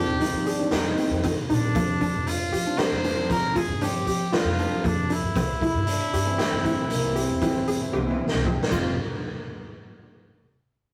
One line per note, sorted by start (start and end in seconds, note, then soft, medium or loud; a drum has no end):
0.00 0.16 D#3 medium
0.00 0.16 G3 medium
0.00 0.16 C4 medium
0.00 0.21 C4 medium
0.00 0.16 D4 medium
0.00 0.17 F4 medium
0.00 0.94 G4 loud
0.07 0.18 D#2 medium
0.20 0.52 D#3 medium
0.20 0.52 G3 medium
0.20 0.52 C4 medium
0.20 0.47 D#4 medium
0.20 0.43 D#4 medium
0.20 0.52 F4 loud
0.20 closed hi-hat medium
0.33 0.54 F3 medium
0.46 0.71 D4 medium
0.46 0.68 G#4 medium
0.46 closed hi-hat medium
0.59 0.81 D#3 medium
0.59 0.81 G3 medium
0.59 0.80 C4 medium
0.59 0.80 D4 medium
0.71 0.92 F2 medium
0.71 0.96 D#4 medium
0.71 1.15 G4 medium
0.71 snare loud
0.71 closed hi-hat medium
0.86 1.38 D#3 medium
0.86 1.38 G3 medium
0.86 1.38 C4 medium
0.86 1.38 D#4 loud
0.97 1.34 C4 medium
0.97 closed hi-hat medium
1.10 1.31 F2 medium
1.23 1.46 C4 medium
1.23 kick medium
1.23 snare soft
1.23 closed hi-hat medium
1.49 1.70 A#1 medium
1.49 1.71 D#3 medium
1.49 1.71 G3 medium
1.49 1.71 C4 medium
1.49 2.29 D4 medium
1.49 1.71 D4 medium
1.49 1.71 D#4 medium
1.49 closed hi-hat medium
1.75 2.06 F2 loud
1.75 2.48 F3 medium
1.75 2.48 G3 medium
1.75 1.97 A#3 medium
1.75 2.48 C4 medium
1.75 2.48 D4 medium
1.75 kick loud
1.75 closed hi-hat medium
1.75 shaker medium
2.01 2.44 D4 medium
2.01 kick medium
2.01 closed hi-hat medium
2.13 2.44 F2 medium
2.27 2.80 F4 loud
2.27 closed hi-hat medium
2.52 2.73 F3 medium
2.52 2.74 G4 medium
2.52 closed hi-hat medium
2.66 2.97 F3 medium
2.66 2.97 G3 medium
2.66 2.97 C4 medium
2.66 2.97 D4 medium
2.78 3.00 G4 medium
2.78 3.30 C5 loud
2.78 snare loud
2.78 closed hi-hat medium
2.91 3.22 F2 medium
3.04 3.15 F3 medium
3.04 3.15 G3 medium
3.04 3.15 C4 medium
3.04 3.47 D4 medium
3.04 3.15 F4 medium
3.04 snare soft
3.04 closed hi-hat medium
3.17 3.69 F3 medium
3.17 3.69 G3 medium
3.17 3.69 C4 medium
3.17 3.69 D4 medium
3.29 3.60 F3 loud
3.29 3.59 A#4 loud
3.29 kick medium
3.29 snare soft
3.29 closed hi-hat medium
3.29 shaker soft
3.56 3.77 F4 medium
3.56 3.83 G#4 medium
3.56 kick medium
3.56 closed hi-hat medium
3.56 shaker soft
3.68 3.99 G2 medium
3.81 4.23 F3 medium
3.81 4.23 G3 medium
3.81 4.23 C4 medium
3.81 4.03 D4 medium
3.81 4.23 F4 medium
3.81 4.36 G4 loud
3.81 closed hi-hat medium
4.07 4.27 F3 medium
4.07 4.28 G4 medium
4.07 closed hi-hat medium
4.32 4.54 F3 medium
4.32 4.54 G3 medium
4.32 4.54 C4 medium
4.32 4.75 F4 medium
4.32 4.87 F4 medium
4.32 snare loud
4.32 closed hi-hat medium
4.44 4.65 F2 medium
4.58 5.36 F3 medium
4.58 5.36 G3 medium
4.58 5.36 C4 medium
4.58 5.36 D4 medium
4.58 closed hi-hat medium
4.84 5.15 F2 medium
4.84 5.06 A#3 medium
4.84 5.14 D4 medium
4.84 kick loud
4.84 closed hi-hat medium
5.10 5.32 D4 medium
5.10 8.47 E4 medium
5.10 closed hi-hat medium
5.22 5.33 G2 medium
5.35 5.66 C2 medium
5.35 5.57 C4 medium
5.35 kick loud
5.35 closed hi-hat medium
5.35 shaker soft
5.61 6.05 E4 medium
5.61 5.89 E4 medium
5.61 kick medium
5.61 closed hi-hat medium
5.75 5.95 G2 medium
5.87 6.41 D4 medium
5.87 closed hi-hat medium
5.87 shaker soft
6.13 6.34 G2 medium
6.13 6.35 G4 medium
6.13 closed hi-hat medium
6.25 6.88 E3 loud
6.25 6.88 G3 medium
6.25 6.88 C4 medium
6.25 6.89 E4 loud
6.38 6.91 C4 medium
6.38 6.60 G4 medium
6.38 snare loud
6.38 closed hi-hat medium
6.38 shaker soft
6.52 6.72 G2 medium
6.64 7.07 E4 medium
6.64 kick medium
6.64 closed hi-hat medium
6.64 shaker soft
6.90 7.21 C2 medium
6.90 7.18 A#3 medium
6.90 closed hi-hat medium
7.02 7.13 E3 medium
7.02 7.14 G3 medium
7.02 7.14 C4 medium
7.02 7.14 E4 medium
7.15 7.37 E3 medium
7.15 7.37 G3 medium
7.15 7.37 C4 medium
7.15 8.20 C4 medium
7.15 7.37 E4 medium
7.15 7.38 G4 medium
7.15 closed hi-hat medium
7.15 shaker soft
7.29 7.40 E2 medium
7.41 7.73 E3 medium
7.41 7.73 G3 medium
7.41 7.73 C4 medium
7.41 7.64 E4 medium
7.41 7.74 G4 loud
7.41 kick medium
7.41 snare soft
7.41 closed hi-hat medium
7.55 7.76 C3 medium
7.67 7.89 G#4 medium
7.67 closed hi-hat medium
7.67 shaker soft
7.80 8.02 E3 medium
7.80 8.02 G3 medium
7.80 8.02 C4 medium
7.80 8.02 E4 medium
7.93 8.14 C2 medium
7.93 8.36 G4 medium
7.93 high tom medium
7.93 shaker soft
8.06 8.59 E3 medium
8.06 8.59 G3 medium
8.06 8.59 C4 medium
8.06 8.59 E4 loud
8.11 high tom medium
8.28 snare medium
8.33 8.53 C2 medium
8.45 8.67 C4 medium
8.45 8.70 G5 medium
8.45 kick medium
8.45 mid tom medium
8.63 snare medium
8.71 8.95 F1 medium
8.71 8.96 G3 medium
8.71 8.95 G#3 medium
8.71 8.95 C4 medium
8.71 8.96 C4 medium
8.71 8.95 F4 medium
8.71 8.96 F4 medium
8.71 kick loud
8.71 crash medium
8.71 shaker medium